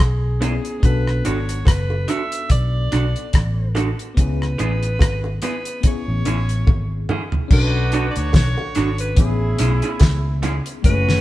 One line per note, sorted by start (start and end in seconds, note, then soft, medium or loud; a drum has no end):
0.00 0.57 B1 medium
0.00 0.36 B3 medium
0.00 0.37 C#4 medium
0.00 0.38 E4 medium
0.00 0.84 G#4 medium
0.00 0.42 G#5 medium
0.00 cross-stick loud
0.40 0.79 B3 soft
0.40 0.53 B3 medium
0.40 0.83 C#4 soft
0.40 0.83 E4 soft
0.40 0.53 E4 medium
0.40 0.53 G#4 medium
0.40 0.84 G#4 medium
0.40 closed hi-hat medium
0.40 high bongo medium
0.40 low bongo medium
0.65 closed hi-hat soft
0.80 1.20 B1 medium
0.80 4.12 B3 medium
0.80 4.13 D4 medium
0.80 4.14 F#4 medium
0.80 kick loud
0.80 closed hi-hat medium
0.85 4.15 A4 medium
0.85 1.27 B4 medium
1.07 cross-stick medium
1.25 1.63 G#1 medium
1.25 1.36 D4 medium
1.25 1.37 F#4 medium
1.25 1.37 A4 medium
1.25 1.68 C#5 loud
1.25 closed hi-hat medium
1.25 high bongo soft
1.49 closed hi-hat medium
1.65 2.04 F#1 medium
1.65 2.11 B4 loud
1.65 kick loud
1.65 cross-stick loud
1.65 closed hi-hat loud
1.65 high bongo medium
1.90 high bongo medium
2.08 2.20 D4 medium
2.08 2.20 F#4 medium
2.08 2.20 A4 medium
2.08 2.51 E5 medium
2.08 closed hi-hat medium
2.08 low bongo medium
2.32 closed hi-hat medium
2.50 2.88 B1 medium
2.50 3.72 D5 loud
2.50 kick loud
2.50 closed hi-hat loud
2.92 3.13 B1 medium
2.92 3.03 D4 medium
2.92 3.04 F#4 medium
2.92 3.04 A4 medium
2.92 cross-stick medium
2.92 closed hi-hat medium
3.16 closed hi-hat soft
3.33 3.92 A1 loud
3.33 kick loud
3.33 cross-stick loud
3.33 closed hi-hat medium
3.75 3.87 D4 medium
3.75 3.87 F#4 medium
3.75 3.87 A4 medium
3.75 closed hi-hat medium
3.75 high bongo medium
3.75 low bongo medium
3.99 closed hi-hat soft
4.14 4.55 C#2 medium
4.14 5.79 B3 medium
4.14 5.80 C#4 medium
4.14 5.39 B4 medium
4.14 kick loud
4.14 closed hi-hat medium
4.18 5.81 E4 medium
4.18 5.82 G#4 medium
4.42 cross-stick medium
4.58 4.96 A1 medium
4.58 4.70 B3 medium
4.58 4.71 E4 medium
4.58 4.71 G#4 medium
4.58 closed hi-hat medium
4.58 high bongo soft
4.83 closed hi-hat soft
4.99 5.38 G#1 medium
4.99 kick loud
4.99 cross-stick loud
4.99 closed hi-hat loud
4.99 high bongo medium
5.24 high bongo medium
5.42 5.54 B3 medium
5.42 5.54 E4 medium
5.42 5.54 G#4 medium
5.42 5.82 B4 medium
5.42 closed hi-hat medium
5.42 low bongo medium
5.65 closed hi-hat medium
5.81 7.46 B3 medium
5.81 7.47 C#4 medium
5.81 kick loud
5.81 closed hi-hat loud
5.85 7.48 E4 medium
5.85 7.49 G#4 medium
5.85 7.07 C#5 loud
6.08 6.24 A1 loud
6.25 6.63 A1 medium
6.25 6.37 C#4 medium
6.25 6.38 E4 medium
6.25 6.38 G#4 medium
6.25 closed hi-hat medium
6.25 high bongo soft
6.49 closed hi-hat soft
6.67 7.05 G#1 medium
6.67 kick loud
6.67 high tom medium
6.67 high bongo medium
7.09 7.21 C#4 medium
7.09 7.21 E4 medium
7.09 7.22 G#4 medium
7.09 mid tom medium
7.09 high bongo medium
7.09 low bongo medium
7.32 floor tom medium
7.48 8.09 B1 medium
7.48 8.74 B3 medium
7.48 9.13 C#4 medium
7.48 9.14 D4 medium
7.48 8.73 D4 medium
7.48 8.74 F#4 medium
7.48 kick loud
7.48 crash medium
7.52 9.15 F#4 medium
7.52 9.16 A4 medium
7.52 8.07 B4 loud
7.92 8.04 D4 medium
7.92 8.05 F#4 medium
7.92 8.05 A4 medium
7.92 closed hi-hat medium
8.11 8.19 D5 medium
8.16 8.33 D2 medium
8.16 8.35 C#5 loud
8.16 closed hi-hat medium
8.33 8.55 B1 medium
8.33 8.96 C#5 loud
8.33 kick loud
8.33 snare loud
8.33 closed hi-hat loud
8.33 high bongo medium
8.58 high bongo medium
8.75 9.14 G#1 medium
8.75 8.87 D4 medium
8.75 8.88 F#4 loud
8.75 8.88 A4 medium
8.75 closed hi-hat medium
8.98 9.17 B4 medium
8.98 closed hi-hat medium
9.15 9.55 A1 loud
9.15 10.40 A3 medium
9.15 10.80 B3 medium
9.15 10.81 C#4 medium
9.15 10.40 C#4 medium
9.15 10.40 E4 medium
9.15 10.82 E4 medium
9.15 kick loud
9.15 closed hi-hat medium
9.20 10.40 G#4 medium
9.20 10.83 G#4 medium
9.59 9.80 B1 medium
9.59 9.71 C#4 medium
9.59 9.71 E4 loud
9.59 9.72 G#4 medium
9.59 closed hi-hat loud
9.82 9.91 C#4 medium
9.82 9.90 E4 medium
9.82 9.90 G#4 medium
9.82 closed hi-hat soft
10.00 10.59 C#2 loud
10.00 kick loud
10.00 snare loud
10.00 closed hi-hat medium
10.00 high bongo medium
10.43 10.54 C#4 medium
10.43 10.55 E4 medium
10.43 10.55 G#4 medium
10.43 closed hi-hat medium
10.43 high bongo medium
10.43 low bongo medium
10.66 closed hi-hat medium
10.82 11.21 F#1 loud
10.82 10.91 G#3 medium
10.82 11.21 A3 medium
10.82 11.21 C#4 medium
10.82 11.21 F#4 medium
10.82 11.21 B4 loud
10.82 kick loud
10.82 closed hi-hat loud
10.86 11.21 A3 medium
10.86 11.21 E4 medium
10.86 11.21 G#4 medium
11.09 snare medium